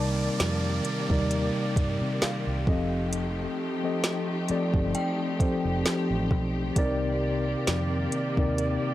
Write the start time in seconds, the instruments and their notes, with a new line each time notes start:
Already playing: fingered electric bass C2, tine electric piano C3 G3 D#4 A#4 D5 D#5 B5, string section D#3 A#3 C4 G4 D5, synth bell A5, downlifter
0.40 fingered electric bass F2, snare, closed hi-hat
0.85 closed hi-hat
1.10 fingered electric bass D#2, tine electric piano C3 G3 D#4 A#4 D5, kick
1.31 closed hi-hat
1.76 fingered electric bass G2, kick, closed hi-hat
2.01 fingered electric bass C3
2.22 synth bell F5, muted fingered electric bass stroke, snare, closed hi-hat
2.47 fingered electric bass C2
2.67 fingered electric bass F1, string section F3 A3 D#4, tine electric piano F3 C4 G4 A4 D#5, kick
3.13 closed hi-hat
3.83 tine electric piano F3 C4 G4 A4 D#5
4.04 snare, closed hi-hat
4.49 tine electric piano F3 C4 G4 A4 D5, muted fingered electric bass stroke, closed hi-hat
4.74 fingered electric bass G1, kick
4.95 synth bell G5, closed hi-hat
5.40 tine electric piano F3 C4 G4 A4 C5, muted fingered electric bass stroke, kick, closed hi-hat
5.65 fingered electric bass F1
5.86 snare, closed hi-hat
6.10 fingered electric bass A1
6.31 fingered electric bass B1, kick
6.76 fingered electric bass C2, tine electric piano C3 C4 D#4 A#4 D5, string section D#3 A#3 D5, kick, closed hi-hat
7.67 fingered electric bass F2, snare, closed hi-hat
8.12 closed hi-hat
8.37 fingered electric bass D#2, tine electric piano C3 C4 D#4 A#4 D5, kick
8.58 closed hi-hat